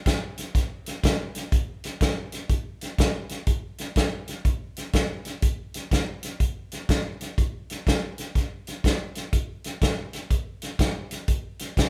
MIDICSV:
0, 0, Header, 1, 2, 480
1, 0, Start_track
1, 0, Tempo, 488202
1, 541, Time_signature, 4, 2, 24, 8
1, 11691, End_track
2, 0, Start_track
2, 0, Title_t, "Drums"
2, 57, Note_on_c, 9, 42, 79
2, 59, Note_on_c, 9, 36, 83
2, 71, Note_on_c, 9, 38, 109
2, 156, Note_off_c, 9, 42, 0
2, 158, Note_off_c, 9, 36, 0
2, 169, Note_off_c, 9, 38, 0
2, 369, Note_on_c, 9, 42, 60
2, 383, Note_on_c, 9, 38, 33
2, 468, Note_off_c, 9, 42, 0
2, 482, Note_off_c, 9, 38, 0
2, 539, Note_on_c, 9, 36, 89
2, 541, Note_on_c, 9, 42, 81
2, 555, Note_on_c, 9, 38, 33
2, 638, Note_off_c, 9, 36, 0
2, 640, Note_off_c, 9, 42, 0
2, 653, Note_off_c, 9, 38, 0
2, 848, Note_on_c, 9, 42, 62
2, 861, Note_on_c, 9, 38, 33
2, 946, Note_off_c, 9, 42, 0
2, 960, Note_off_c, 9, 38, 0
2, 1018, Note_on_c, 9, 36, 87
2, 1018, Note_on_c, 9, 42, 92
2, 1032, Note_on_c, 9, 38, 113
2, 1116, Note_off_c, 9, 36, 0
2, 1117, Note_off_c, 9, 42, 0
2, 1131, Note_off_c, 9, 38, 0
2, 1326, Note_on_c, 9, 42, 65
2, 1339, Note_on_c, 9, 38, 37
2, 1424, Note_off_c, 9, 42, 0
2, 1438, Note_off_c, 9, 38, 0
2, 1495, Note_on_c, 9, 42, 88
2, 1496, Note_on_c, 9, 36, 96
2, 1593, Note_off_c, 9, 42, 0
2, 1594, Note_off_c, 9, 36, 0
2, 1806, Note_on_c, 9, 42, 72
2, 1820, Note_on_c, 9, 38, 34
2, 1904, Note_off_c, 9, 42, 0
2, 1918, Note_off_c, 9, 38, 0
2, 1973, Note_on_c, 9, 42, 78
2, 1975, Note_on_c, 9, 36, 81
2, 1987, Note_on_c, 9, 38, 101
2, 2072, Note_off_c, 9, 42, 0
2, 2074, Note_off_c, 9, 36, 0
2, 2085, Note_off_c, 9, 38, 0
2, 2282, Note_on_c, 9, 42, 62
2, 2296, Note_on_c, 9, 38, 34
2, 2380, Note_off_c, 9, 42, 0
2, 2394, Note_off_c, 9, 38, 0
2, 2451, Note_on_c, 9, 42, 81
2, 2454, Note_on_c, 9, 36, 81
2, 2549, Note_off_c, 9, 42, 0
2, 2552, Note_off_c, 9, 36, 0
2, 2765, Note_on_c, 9, 42, 55
2, 2778, Note_on_c, 9, 38, 29
2, 2863, Note_off_c, 9, 42, 0
2, 2877, Note_off_c, 9, 38, 0
2, 2935, Note_on_c, 9, 36, 93
2, 2935, Note_on_c, 9, 42, 83
2, 2949, Note_on_c, 9, 38, 115
2, 3033, Note_off_c, 9, 36, 0
2, 3034, Note_off_c, 9, 42, 0
2, 3048, Note_off_c, 9, 38, 0
2, 3238, Note_on_c, 9, 42, 59
2, 3252, Note_on_c, 9, 38, 34
2, 3337, Note_off_c, 9, 42, 0
2, 3350, Note_off_c, 9, 38, 0
2, 3408, Note_on_c, 9, 42, 85
2, 3412, Note_on_c, 9, 36, 88
2, 3507, Note_off_c, 9, 42, 0
2, 3511, Note_off_c, 9, 36, 0
2, 3720, Note_on_c, 9, 42, 58
2, 3734, Note_on_c, 9, 38, 32
2, 3819, Note_off_c, 9, 42, 0
2, 3832, Note_off_c, 9, 38, 0
2, 3891, Note_on_c, 9, 42, 82
2, 3894, Note_on_c, 9, 36, 79
2, 3905, Note_on_c, 9, 38, 99
2, 3989, Note_off_c, 9, 42, 0
2, 3992, Note_off_c, 9, 36, 0
2, 4003, Note_off_c, 9, 38, 0
2, 4204, Note_on_c, 9, 42, 59
2, 4218, Note_on_c, 9, 38, 34
2, 4303, Note_off_c, 9, 42, 0
2, 4316, Note_off_c, 9, 38, 0
2, 4375, Note_on_c, 9, 36, 86
2, 4376, Note_on_c, 9, 42, 77
2, 4473, Note_off_c, 9, 36, 0
2, 4474, Note_off_c, 9, 42, 0
2, 4685, Note_on_c, 9, 42, 58
2, 4699, Note_on_c, 9, 38, 32
2, 4784, Note_off_c, 9, 42, 0
2, 4797, Note_off_c, 9, 38, 0
2, 4850, Note_on_c, 9, 42, 84
2, 4854, Note_on_c, 9, 36, 86
2, 4864, Note_on_c, 9, 38, 108
2, 4949, Note_off_c, 9, 42, 0
2, 4952, Note_off_c, 9, 36, 0
2, 4963, Note_off_c, 9, 38, 0
2, 5161, Note_on_c, 9, 42, 63
2, 5174, Note_on_c, 9, 38, 33
2, 5259, Note_off_c, 9, 42, 0
2, 5273, Note_off_c, 9, 38, 0
2, 5330, Note_on_c, 9, 42, 90
2, 5334, Note_on_c, 9, 36, 89
2, 5429, Note_off_c, 9, 42, 0
2, 5432, Note_off_c, 9, 36, 0
2, 5645, Note_on_c, 9, 42, 69
2, 5659, Note_on_c, 9, 38, 32
2, 5743, Note_off_c, 9, 42, 0
2, 5757, Note_off_c, 9, 38, 0
2, 5815, Note_on_c, 9, 36, 78
2, 5815, Note_on_c, 9, 42, 78
2, 5829, Note_on_c, 9, 38, 96
2, 5913, Note_off_c, 9, 36, 0
2, 5913, Note_off_c, 9, 42, 0
2, 5927, Note_off_c, 9, 38, 0
2, 6122, Note_on_c, 9, 42, 67
2, 6136, Note_on_c, 9, 38, 36
2, 6221, Note_off_c, 9, 42, 0
2, 6234, Note_off_c, 9, 38, 0
2, 6293, Note_on_c, 9, 42, 77
2, 6294, Note_on_c, 9, 36, 79
2, 6391, Note_off_c, 9, 42, 0
2, 6392, Note_off_c, 9, 36, 0
2, 6603, Note_on_c, 9, 42, 58
2, 6617, Note_on_c, 9, 38, 30
2, 6701, Note_off_c, 9, 42, 0
2, 6715, Note_off_c, 9, 38, 0
2, 6773, Note_on_c, 9, 42, 87
2, 6775, Note_on_c, 9, 36, 83
2, 6787, Note_on_c, 9, 38, 111
2, 6871, Note_off_c, 9, 42, 0
2, 6873, Note_off_c, 9, 36, 0
2, 6885, Note_off_c, 9, 38, 0
2, 7085, Note_on_c, 9, 42, 60
2, 7099, Note_on_c, 9, 38, 33
2, 7184, Note_off_c, 9, 42, 0
2, 7197, Note_off_c, 9, 38, 0
2, 7255, Note_on_c, 9, 36, 90
2, 7257, Note_on_c, 9, 42, 77
2, 7354, Note_off_c, 9, 36, 0
2, 7355, Note_off_c, 9, 42, 0
2, 7568, Note_on_c, 9, 42, 58
2, 7582, Note_on_c, 9, 38, 34
2, 7666, Note_off_c, 9, 42, 0
2, 7680, Note_off_c, 9, 38, 0
2, 7735, Note_on_c, 9, 36, 77
2, 7737, Note_on_c, 9, 42, 73
2, 7751, Note_on_c, 9, 38, 106
2, 7833, Note_off_c, 9, 36, 0
2, 7836, Note_off_c, 9, 42, 0
2, 7849, Note_off_c, 9, 38, 0
2, 8042, Note_on_c, 9, 42, 60
2, 8056, Note_on_c, 9, 38, 36
2, 8140, Note_off_c, 9, 42, 0
2, 8154, Note_off_c, 9, 38, 0
2, 8213, Note_on_c, 9, 36, 82
2, 8213, Note_on_c, 9, 42, 73
2, 8227, Note_on_c, 9, 38, 35
2, 8312, Note_off_c, 9, 36, 0
2, 8312, Note_off_c, 9, 42, 0
2, 8326, Note_off_c, 9, 38, 0
2, 8524, Note_on_c, 9, 42, 53
2, 8538, Note_on_c, 9, 38, 32
2, 8622, Note_off_c, 9, 42, 0
2, 8636, Note_off_c, 9, 38, 0
2, 8694, Note_on_c, 9, 36, 85
2, 8698, Note_on_c, 9, 42, 77
2, 8711, Note_on_c, 9, 38, 102
2, 8792, Note_off_c, 9, 36, 0
2, 8796, Note_off_c, 9, 42, 0
2, 8810, Note_off_c, 9, 38, 0
2, 8999, Note_on_c, 9, 42, 59
2, 9013, Note_on_c, 9, 38, 34
2, 9097, Note_off_c, 9, 42, 0
2, 9111, Note_off_c, 9, 38, 0
2, 9170, Note_on_c, 9, 42, 93
2, 9171, Note_on_c, 9, 36, 81
2, 9269, Note_off_c, 9, 42, 0
2, 9270, Note_off_c, 9, 36, 0
2, 9480, Note_on_c, 9, 42, 70
2, 9494, Note_on_c, 9, 38, 34
2, 9579, Note_off_c, 9, 42, 0
2, 9592, Note_off_c, 9, 38, 0
2, 9651, Note_on_c, 9, 36, 83
2, 9651, Note_on_c, 9, 42, 92
2, 9665, Note_on_c, 9, 38, 95
2, 9749, Note_off_c, 9, 42, 0
2, 9750, Note_off_c, 9, 36, 0
2, 9763, Note_off_c, 9, 38, 0
2, 9961, Note_on_c, 9, 42, 70
2, 9974, Note_on_c, 9, 38, 34
2, 10059, Note_off_c, 9, 42, 0
2, 10073, Note_off_c, 9, 38, 0
2, 10132, Note_on_c, 9, 36, 80
2, 10132, Note_on_c, 9, 42, 90
2, 10230, Note_off_c, 9, 36, 0
2, 10230, Note_off_c, 9, 42, 0
2, 10439, Note_on_c, 9, 42, 64
2, 10453, Note_on_c, 9, 38, 31
2, 10537, Note_off_c, 9, 42, 0
2, 10551, Note_off_c, 9, 38, 0
2, 10610, Note_on_c, 9, 36, 83
2, 10610, Note_on_c, 9, 42, 93
2, 10623, Note_on_c, 9, 38, 116
2, 10708, Note_off_c, 9, 36, 0
2, 10708, Note_off_c, 9, 42, 0
2, 10722, Note_off_c, 9, 38, 0
2, 10922, Note_on_c, 9, 42, 67
2, 10936, Note_on_c, 9, 38, 37
2, 11020, Note_off_c, 9, 42, 0
2, 11034, Note_off_c, 9, 38, 0
2, 11089, Note_on_c, 9, 42, 92
2, 11092, Note_on_c, 9, 36, 80
2, 11187, Note_off_c, 9, 42, 0
2, 11190, Note_off_c, 9, 36, 0
2, 11399, Note_on_c, 9, 42, 68
2, 11412, Note_on_c, 9, 38, 36
2, 11497, Note_off_c, 9, 42, 0
2, 11511, Note_off_c, 9, 38, 0
2, 11573, Note_on_c, 9, 36, 79
2, 11575, Note_on_c, 9, 42, 83
2, 11588, Note_on_c, 9, 38, 115
2, 11672, Note_off_c, 9, 36, 0
2, 11673, Note_off_c, 9, 42, 0
2, 11687, Note_off_c, 9, 38, 0
2, 11691, End_track
0, 0, End_of_file